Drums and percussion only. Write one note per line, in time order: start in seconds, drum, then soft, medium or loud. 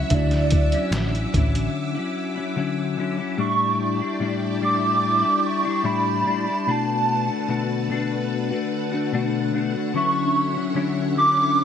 0.10 kick loud
0.10 closed hi-hat loud
0.31 snare soft
0.31 closed hi-hat soft
0.51 kick medium
0.51 closed hi-hat medium
0.72 closed hi-hat medium
0.92 snare loud
0.92 clap medium
0.92 closed hi-hat loud
1.15 closed hi-hat soft
1.34 kick loud
1.34 closed hi-hat medium
1.55 closed hi-hat medium